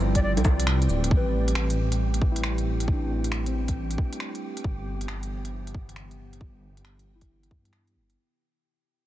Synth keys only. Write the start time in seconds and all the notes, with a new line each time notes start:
Already playing: F4 B4 D5
0.28 D5
1.17 B4
2.32 E4
2.92 D4
3.47 C4
3.52 E4
7.15 E4
7.61 B3